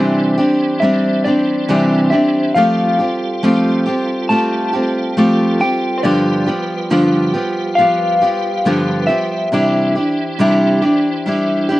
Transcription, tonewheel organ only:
0, 0, Header, 1, 2, 480
1, 0, Start_track
1, 0, Key_signature, 0, "major"
1, 0, Tempo, 869565
1, 1420, Time_signature, 4, 2, 24, 8
1, 6512, End_track
2, 0, Start_track
2, 0, Title_t, "Tonewheel organ"
2, 0, Program_c, 0, 16
2, 0, Note_on_c, 0, 52, 55
2, 0, Note_on_c, 0, 62, 54
2, 0, Note_on_c, 0, 72, 67
2, 1398, Note_off_c, 0, 52, 0
2, 1398, Note_off_c, 0, 72, 0
2, 1400, Note_off_c, 0, 62, 0
2, 1422, Note_on_c, 0, 55, 58
2, 1425, Note_on_c, 0, 69, 68
2, 1428, Note_on_c, 0, 65, 57
2, 3324, Note_off_c, 0, 69, 0
2, 3337, Note_on_c, 0, 71, 74
2, 5238, Note_off_c, 0, 55, 0
2, 5238, Note_off_c, 0, 71, 0
2, 5241, Note_off_c, 0, 65, 0
2, 5263, Note_on_c, 0, 72, 70
2, 5264, Note_on_c, 0, 52, 67
2, 5264, Note_on_c, 0, 62, 57
2, 6512, Note_off_c, 0, 52, 0
2, 6512, Note_off_c, 0, 62, 0
2, 6512, Note_off_c, 0, 72, 0
2, 6512, End_track
0, 0, End_of_file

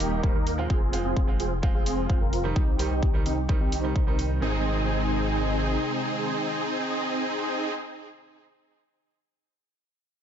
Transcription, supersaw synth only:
0, 0, Header, 1, 2, 480
1, 0, Start_track
1, 0, Key_signature, -4, "major"
1, 0, Tempo, 465116
1, 721, Time_signature, 4, 2, 24, 8
1, 10553, End_track
2, 0, Start_track
2, 0, Title_t, "Supersaw synth"
2, 0, Program_c, 0, 81
2, 0, Note_on_c, 0, 58, 97
2, 0, Note_on_c, 0, 63, 90
2, 0, Note_on_c, 0, 67, 107
2, 214, Note_off_c, 0, 58, 0
2, 214, Note_off_c, 0, 63, 0
2, 214, Note_off_c, 0, 67, 0
2, 242, Note_on_c, 0, 58, 78
2, 242, Note_on_c, 0, 63, 69
2, 242, Note_on_c, 0, 72, 83
2, 344, Note_off_c, 0, 58, 0
2, 344, Note_off_c, 0, 63, 0
2, 344, Note_off_c, 0, 72, 0
2, 362, Note_on_c, 0, 58, 84
2, 362, Note_on_c, 0, 63, 80
2, 362, Note_on_c, 0, 70, 92
2, 579, Note_off_c, 0, 58, 0
2, 579, Note_off_c, 0, 63, 0
2, 579, Note_off_c, 0, 70, 0
2, 723, Note_on_c, 0, 60, 76
2, 723, Note_on_c, 0, 65, 66
2, 723, Note_on_c, 0, 68, 83
2, 1054, Note_off_c, 0, 60, 0
2, 1054, Note_off_c, 0, 65, 0
2, 1054, Note_off_c, 0, 68, 0
2, 1083, Note_on_c, 0, 60, 91
2, 1083, Note_on_c, 0, 65, 89
2, 1083, Note_on_c, 0, 68, 101
2, 1300, Note_off_c, 0, 60, 0
2, 1300, Note_off_c, 0, 65, 0
2, 1300, Note_off_c, 0, 68, 0
2, 1443, Note_on_c, 0, 60, 90
2, 1443, Note_on_c, 0, 65, 84
2, 1443, Note_on_c, 0, 68, 95
2, 1578, Note_off_c, 0, 60, 0
2, 1578, Note_off_c, 0, 65, 0
2, 1578, Note_off_c, 0, 68, 0
2, 1804, Note_on_c, 0, 60, 101
2, 1804, Note_on_c, 0, 65, 89
2, 1804, Note_on_c, 0, 68, 106
2, 2134, Note_off_c, 0, 60, 0
2, 2134, Note_off_c, 0, 65, 0
2, 2134, Note_off_c, 0, 68, 0
2, 2162, Note_on_c, 0, 65, 75
2, 2163, Note_on_c, 0, 60, 78
2, 2163, Note_on_c, 0, 72, 88
2, 2264, Note_off_c, 0, 60, 0
2, 2264, Note_off_c, 0, 65, 0
2, 2264, Note_off_c, 0, 72, 0
2, 2281, Note_on_c, 0, 70, 93
2, 2282, Note_on_c, 0, 60, 86
2, 2282, Note_on_c, 0, 65, 75
2, 2499, Note_off_c, 0, 60, 0
2, 2499, Note_off_c, 0, 65, 0
2, 2499, Note_off_c, 0, 70, 0
2, 2642, Note_on_c, 0, 60, 74
2, 2643, Note_on_c, 0, 63, 64
2, 2643, Note_on_c, 0, 67, 83
2, 2973, Note_off_c, 0, 60, 0
2, 2974, Note_off_c, 0, 63, 0
2, 2974, Note_off_c, 0, 67, 0
2, 3003, Note_on_c, 0, 60, 91
2, 3003, Note_on_c, 0, 63, 86
2, 3003, Note_on_c, 0, 67, 106
2, 3220, Note_off_c, 0, 60, 0
2, 3220, Note_off_c, 0, 63, 0
2, 3220, Note_off_c, 0, 67, 0
2, 3363, Note_on_c, 0, 63, 84
2, 3364, Note_on_c, 0, 60, 89
2, 3364, Note_on_c, 0, 67, 96
2, 3498, Note_off_c, 0, 63, 0
2, 3499, Note_off_c, 0, 60, 0
2, 3499, Note_off_c, 0, 67, 0
2, 3723, Note_on_c, 0, 60, 95
2, 3723, Note_on_c, 0, 63, 89
2, 3723, Note_on_c, 0, 67, 104
2, 4054, Note_off_c, 0, 60, 0
2, 4054, Note_off_c, 0, 63, 0
2, 4054, Note_off_c, 0, 67, 0
2, 4084, Note_on_c, 0, 60, 80
2, 4084, Note_on_c, 0, 63, 74
2, 4084, Note_on_c, 0, 72, 87
2, 4185, Note_off_c, 0, 60, 0
2, 4185, Note_off_c, 0, 63, 0
2, 4185, Note_off_c, 0, 72, 0
2, 4202, Note_on_c, 0, 63, 76
2, 4202, Note_on_c, 0, 70, 91
2, 4203, Note_on_c, 0, 60, 81
2, 4419, Note_off_c, 0, 70, 0
2, 4420, Note_off_c, 0, 60, 0
2, 4420, Note_off_c, 0, 63, 0
2, 4563, Note_on_c, 0, 60, 84
2, 4563, Note_on_c, 0, 68, 84
2, 4564, Note_on_c, 0, 63, 76
2, 7966, Note_off_c, 0, 60, 0
2, 7966, Note_off_c, 0, 63, 0
2, 7966, Note_off_c, 0, 68, 0
2, 10553, End_track
0, 0, End_of_file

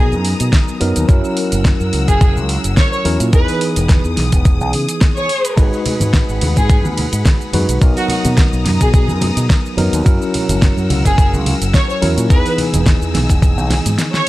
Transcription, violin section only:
0, 0, Header, 1, 2, 480
1, 0, Start_track
1, 0, Tempo, 560748
1, 933, Time_signature, 4, 2, 24, 8
1, 12231, End_track
2, 0, Start_track
2, 0, Title_t, "Violin section"
2, 0, Program_c, 0, 48
2, 1783, Note_on_c, 0, 68, 90
2, 1944, Note_off_c, 0, 68, 0
2, 2371, Note_on_c, 0, 73, 91
2, 2456, Note_off_c, 0, 73, 0
2, 2507, Note_on_c, 0, 73, 79
2, 2575, Note_off_c, 0, 73, 0
2, 2857, Note_on_c, 0, 71, 93
2, 3029, Note_off_c, 0, 71, 0
2, 4424, Note_on_c, 0, 73, 94
2, 4773, Note_off_c, 0, 73, 0
2, 5621, Note_on_c, 0, 68, 91
2, 5783, Note_off_c, 0, 68, 0
2, 6822, Note_on_c, 0, 66, 87
2, 6893, Note_off_c, 0, 66, 0
2, 6930, Note_on_c, 0, 66, 75
2, 7015, Note_off_c, 0, 66, 0
2, 7544, Note_on_c, 0, 68, 87
2, 7614, Note_off_c, 0, 68, 0
2, 7652, Note_on_c, 0, 68, 78
2, 7736, Note_off_c, 0, 68, 0
2, 9464, Note_on_c, 0, 68, 93
2, 9624, Note_off_c, 0, 68, 0
2, 10051, Note_on_c, 0, 73, 89
2, 10136, Note_off_c, 0, 73, 0
2, 10179, Note_on_c, 0, 73, 77
2, 10251, Note_off_c, 0, 73, 0
2, 10527, Note_on_c, 0, 71, 94
2, 10703, Note_off_c, 0, 71, 0
2, 12103, Note_on_c, 0, 73, 96
2, 12231, Note_off_c, 0, 73, 0
2, 12231, End_track
0, 0, End_of_file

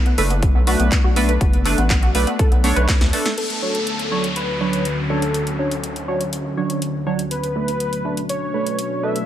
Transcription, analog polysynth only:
0, 0, Header, 1, 2, 480
1, 0, Start_track
1, 0, Tempo, 491803
1, 1376, Time_signature, 4, 2, 24, 8
1, 9037, End_track
2, 0, Start_track
2, 0, Title_t, "Analog polysynth"
2, 0, Program_c, 0, 90
2, 176, Note_on_c, 0, 57, 89
2, 176, Note_on_c, 0, 62, 80
2, 176, Note_on_c, 0, 71, 99
2, 317, Note_off_c, 0, 57, 0
2, 317, Note_off_c, 0, 62, 0
2, 317, Note_off_c, 0, 71, 0
2, 656, Note_on_c, 0, 57, 82
2, 656, Note_on_c, 0, 62, 75
2, 656, Note_on_c, 0, 71, 92
2, 880, Note_off_c, 0, 57, 0
2, 880, Note_off_c, 0, 62, 0
2, 880, Note_off_c, 0, 71, 0
2, 1136, Note_on_c, 0, 57, 96
2, 1136, Note_on_c, 0, 62, 88
2, 1136, Note_on_c, 0, 71, 105
2, 1277, Note_off_c, 0, 57, 0
2, 1277, Note_off_c, 0, 62, 0
2, 1277, Note_off_c, 0, 71, 0
2, 1616, Note_on_c, 0, 57, 80
2, 1616, Note_on_c, 0, 62, 71
2, 1616, Note_on_c, 0, 71, 85
2, 1757, Note_off_c, 0, 57, 0
2, 1757, Note_off_c, 0, 62, 0
2, 1757, Note_off_c, 0, 71, 0
2, 2095, Note_on_c, 0, 57, 90
2, 2095, Note_on_c, 0, 62, 78
2, 2095, Note_on_c, 0, 71, 98
2, 2237, Note_off_c, 0, 57, 0
2, 2237, Note_off_c, 0, 62, 0
2, 2237, Note_off_c, 0, 71, 0
2, 2575, Note_on_c, 0, 62, 79
2, 2576, Note_on_c, 0, 57, 89
2, 2576, Note_on_c, 0, 73, 96
2, 2800, Note_off_c, 0, 57, 0
2, 2800, Note_off_c, 0, 62, 0
2, 2800, Note_off_c, 0, 73, 0
2, 3056, Note_on_c, 0, 57, 74
2, 3056, Note_on_c, 0, 62, 67
2, 3056, Note_on_c, 0, 69, 83
2, 3197, Note_off_c, 0, 57, 0
2, 3197, Note_off_c, 0, 62, 0
2, 3197, Note_off_c, 0, 69, 0
2, 3536, Note_on_c, 0, 54, 74
2, 3536, Note_on_c, 0, 62, 64
2, 3536, Note_on_c, 0, 73, 81
2, 3677, Note_off_c, 0, 54, 0
2, 3677, Note_off_c, 0, 62, 0
2, 3677, Note_off_c, 0, 73, 0
2, 4016, Note_on_c, 0, 54, 88
2, 4016, Note_on_c, 0, 62, 81
2, 4016, Note_on_c, 0, 73, 95
2, 4157, Note_off_c, 0, 54, 0
2, 4157, Note_off_c, 0, 62, 0
2, 4157, Note_off_c, 0, 73, 0
2, 4496, Note_on_c, 0, 54, 78
2, 4496, Note_on_c, 0, 62, 70
2, 4496, Note_on_c, 0, 73, 88
2, 4720, Note_off_c, 0, 54, 0
2, 4720, Note_off_c, 0, 62, 0
2, 4720, Note_off_c, 0, 73, 0
2, 4976, Note_on_c, 0, 54, 90
2, 4976, Note_on_c, 0, 62, 84
2, 4976, Note_on_c, 0, 73, 99
2, 5117, Note_off_c, 0, 54, 0
2, 5117, Note_off_c, 0, 62, 0
2, 5117, Note_off_c, 0, 73, 0
2, 5456, Note_on_c, 0, 54, 71
2, 5456, Note_on_c, 0, 62, 66
2, 5456, Note_on_c, 0, 73, 82
2, 5597, Note_off_c, 0, 54, 0
2, 5597, Note_off_c, 0, 62, 0
2, 5597, Note_off_c, 0, 73, 0
2, 5936, Note_on_c, 0, 54, 85
2, 5936, Note_on_c, 0, 62, 81
2, 5936, Note_on_c, 0, 73, 92
2, 6077, Note_off_c, 0, 54, 0
2, 6077, Note_off_c, 0, 62, 0
2, 6077, Note_off_c, 0, 73, 0
2, 6416, Note_on_c, 0, 54, 79
2, 6416, Note_on_c, 0, 62, 71
2, 6416, Note_on_c, 0, 73, 90
2, 6640, Note_off_c, 0, 54, 0
2, 6640, Note_off_c, 0, 62, 0
2, 6640, Note_off_c, 0, 73, 0
2, 6896, Note_on_c, 0, 54, 96
2, 6896, Note_on_c, 0, 62, 83
2, 6896, Note_on_c, 0, 73, 100
2, 7037, Note_off_c, 0, 54, 0
2, 7037, Note_off_c, 0, 62, 0
2, 7037, Note_off_c, 0, 73, 0
2, 7375, Note_on_c, 0, 57, 73
2, 7375, Note_on_c, 0, 62, 69
2, 7375, Note_on_c, 0, 71, 82
2, 7517, Note_off_c, 0, 57, 0
2, 7517, Note_off_c, 0, 62, 0
2, 7517, Note_off_c, 0, 71, 0
2, 7855, Note_on_c, 0, 57, 88
2, 7856, Note_on_c, 0, 62, 79
2, 7856, Note_on_c, 0, 71, 98
2, 7997, Note_off_c, 0, 57, 0
2, 7997, Note_off_c, 0, 62, 0
2, 7997, Note_off_c, 0, 71, 0
2, 8336, Note_on_c, 0, 57, 81
2, 8336, Note_on_c, 0, 62, 72
2, 8336, Note_on_c, 0, 71, 92
2, 8560, Note_off_c, 0, 57, 0
2, 8560, Note_off_c, 0, 62, 0
2, 8560, Note_off_c, 0, 71, 0
2, 8815, Note_on_c, 0, 62, 80
2, 8816, Note_on_c, 0, 57, 90
2, 8816, Note_on_c, 0, 71, 100
2, 8957, Note_off_c, 0, 57, 0
2, 8957, Note_off_c, 0, 62, 0
2, 8957, Note_off_c, 0, 71, 0
2, 9037, End_track
0, 0, End_of_file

